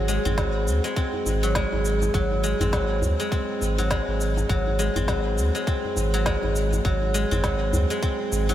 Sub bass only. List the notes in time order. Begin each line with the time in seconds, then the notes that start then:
Already playing: G#1
0.25 G#1
0.67 D#2
1.26 G#1
1.72 G#1
2.14 G#1
2.61 G#1
3.02 D#2
3.61 G#1
4.08 G#1
4.49 G#1
4.96 G#1
5.38 D#2
5.97 G#1
6.43 G#1
6.85 G#1
7.32 G#1
7.73 D#2
8.32 G#1